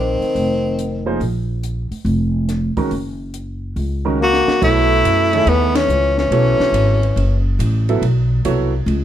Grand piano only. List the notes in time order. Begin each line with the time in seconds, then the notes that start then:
1.06 F3 A#3 D#4 G#4 C5
2.77 D#3 G#3 C#4 F#4 A#4
4.05 D#3 G#3 C#4 F#4 A#4
4.61 F#3 B3 E4 A4 C#5
5.33 D#3 A3 G#4 C#5 E5
6.31 F#3 B3 E4 A4 C#5
7.89 F#3 B3 E4 A4 E5
8.45 F#3 B3 E4 A4 C#5